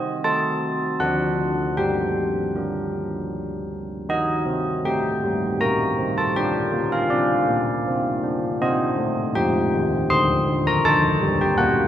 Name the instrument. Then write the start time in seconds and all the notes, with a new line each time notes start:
church bells
Already playing: C4 D#5
0.24 D#4 A4 A5
1.00 D3 D4 C5 F#5
1.77 G3 G5
2.55 D4 A#4
4.09 D#4 A#4 D#5
4.46 C4
4.85 A3 G5
5.24 G3
5.61 A#3 A#5
5.98 C4
6.18 A5
6.36 D4 A#4 G5
6.73 A#3
6.92 F5
7.10 C4 D5
7.49 A#3
7.88 C4
8.24 D4
8.62 C4 C5 D#5
8.98 A3
9.35 F3 G5
9.74 D#3
10.10 D3 C6
10.46 D3
10.67 A#5
10.85 D3 C5 A5
11.21 G3
11.41 G5
11.58 A#3 F#5